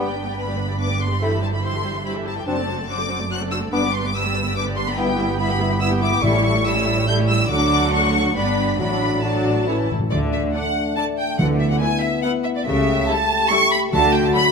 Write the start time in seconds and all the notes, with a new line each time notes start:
Already playing: G1 G2 G5
0.05 G3 B3 G4 D5
0.15 B3 D4 B4
0.26 G3 B3 G4 D5
0.37 B3 D4 B4 B5
0.47 G3 B3 G4 D5
0.57 B3 D4 B4
0.68 G3 B3 G4 D5
0.78 B3 D4 B4 D6
0.89 G3 B3 G4 D5
0.99 B3 D4 B4 C6
1.09 G3 B3 G4 D5
1.21 G3 A3 E4 G4 C5 B5
1.31 E3 G4 A4 E5
1.42 G3 E4 G4 C5 A5
1.52 E3 G4 A4 E5 B5
1.63 G3 E4 G4 C5 C6
1.74 E3 G4 A4 E5
1.84 G3 E4 G4 C5
1.94 E3 G4 A4 E5
2.05 G3 E4 G4 C5 B5
2.15 E3 G4 A4 E5
2.26 G3 E4 G4 C5 A5
2.36 E3 G4 A4 E5 G5
2.46 F#1 F#2 F#3 C4 D4 F#4 C5 A5
2.57 A3 C4 A4 D5
2.67 F#3 D4 F#4 C5
2.78 A3 C4 A4 D5
2.88 F#3 D4 F#4 C5 D6
2.99 A3 C4 A4 D5
3.09 F#3 D4 F#4 C5
3.19 A3 C4 A4 D5
3.30 F#3 D4 F#4 C5 F#6
3.41 A3 C4 A4 D5
3.51 F#3 D4 F#4 C5 E6
3.62 A3 C4 A4 D5
3.72 G1 G2 G3 B3 D4 B4 D6
3.83 B3 G4 D5
3.93 G3 D4 B4 C6
4.04 B3 G4 D5 D6
4.14 G3 D4 B4 E6
4.25 B3 G4 D5
4.35 G3 D4 B4
4.46 B3 G4 D5
4.56 G3 D4 B4 D6
4.66 B3 G4 D5
4.76 G3 D4 B4 C6
4.87 B3 G4 D5 B5
4.98 G3 B3 E4 B4 E5 G5
5.08 B3 G4 G5
5.18 G3 E4 B4 E5
5.29 B3 G4 G5
5.40 G3 B3 E4 B4 E5 B5
5.50 B3 G4 G5
5.60 G3 E4 B4 E5
5.71 B3 G4 G5
5.81 G3 B3 E4 B4 E5 E6
5.92 B3 G4 G5
6.02 G3 E4 B4 E5 D6
6.12 B3 G4 G5
6.23 A1 A2 G3 E4 A4 E5 C#6
6.33 A3 C#4 G4 C#5
6.44 G3 E4 A4 E5
6.55 A3 C#4 G4 C#5
6.65 G3 E4 A4 E5 E6
6.76 A3 C#4 G4 C#5
6.87 G3 E4 A4 E5
6.97 A3 C#4 G4 C#5
7.07 G3 E4 A4 E5 G6
7.19 A3 C#4 G4 C#5
7.29 G3 E4 A4 E5 E6
7.39 A3 C#4 G4 C#5
7.50 D2 D3 F#3 A3 D4 F#4 F#5 D6
7.92 C#6
8.35 G1 G2 G3 B3 D4 G4 D5 B5
8.79 A1 A2 F#3 D4 F#4 D5 B5
9.24 F#3 D4 F#4 D5 A5
9.68 A2 E3 C#4 E4 A4 C#5
9.76 A2
9.83 A2
9.91 A2
9.99 A2
10.11 D2 D3 A3 D4 D5
10.33 E5
10.54 A3 D4 D5 F#5
10.96 A3 D4 D5 A5
11.18 G5
11.38 D2 D3 B3 E4 F#5
11.59 E5
11.70 F#5
11.80 B3 E4 B4 G#5
12.01 E5
12.23 B3 E4 B4 F#5
12.44 E5
12.56 D5
12.65 C#2 C#3 A3 G4 E5
13.07 G3 A3 E4 G4 A4 A5
13.50 G3 A3 E4 G4 A4 C#6
13.72 B5
13.91 D2 D3 A3 F#4 A5
14.14 G5
14.25 A5
14.35 F#3 D4 A4 B5